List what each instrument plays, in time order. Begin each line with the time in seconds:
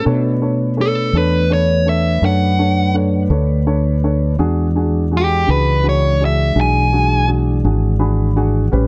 0.05 fretless electric bass B2, tonewheel organ A3 D4 B4, grand piano D4 A4 C#5
0.42 grand piano D4 A4 C#5
0.77 grand piano D4 A4 C#5
0.81 lead electric guitar A4
1.13 fretless electric bass E2, grand piano D4 A4 C#5
1.17 lead electric guitar B4
1.50 grand piano D4 A4 C#5, lead electric guitar C#5
1.86 grand piano D4 A4 C#5, lead electric guitar E5
2.22 fretless electric bass F#2, grand piano D4 A4 C#5, lead electric guitar F#5
2.59 grand piano D4 A4 C#5
2.94 grand piano D4 A4 C#5
3.30 fretless electric bass D2, grand piano D4 A4 C#5
3.67 grand piano D4 A4 C#5
4.04 grand piano D4 A4 C#5
4.39 fretless electric bass E2, tonewheel organ E3 G#3 D4, grand piano D4 F#4 G#4
4.76 grand piano D4 F#4 G#4
5.11 grand piano D4 F#4 G#4
5.17 lead electric guitar G4
5.47 fretless electric bass C#2, grand piano D4 F#4 G#4, lead electric guitar B4
5.83 grand piano D4 F#4 G#4
5.89 lead electric guitar C#5
6.21 grand piano D4 F#4 G#4
6.25 lead electric guitar E5
6.55 fretless electric bass B1, grand piano D4 F#4 G#4
6.61 lead electric guitar G#5
6.93 grand piano D4 F#4 G#4
7.28 grand piano D4 F#4 G#4
7.64 fretless electric bass G#1, grand piano D4 F#4 G#4
7.99 grand piano D4 F#4 G#4 B5
8.36 grand piano D4 F#4 G#4 F#5
8.72 fretless electric bass A1, tonewheel organ G3 C#4 B4, grand piano C#4 G4 B4